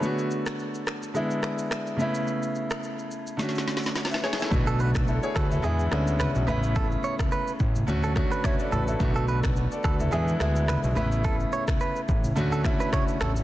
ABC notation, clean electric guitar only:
X:1
M:4/4
L:1/16
Q:"Swing 16ths" 1/4=107
K:Bdor
V:1 name="Clean electric guitar"
z16 | z16 | z A B z3 A z G2 z2 B z B z | A z c z B2 z3 A z B c z A z |
z A B z3 A z G2 z2 B z B z | A z c z B2 z3 A z B c z A z |]